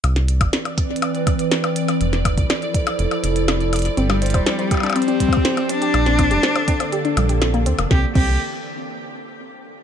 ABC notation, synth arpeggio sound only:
X:1
M:4/4
L:1/16
Q:1/4=122
K:C
V:1 name="Synth arpeggio sound"
z16 | z16 | C G, c c C C G D C C G, c c C C G | D C C G, c c C C G D G, G C _B, C B, |
C z C2 z12 |]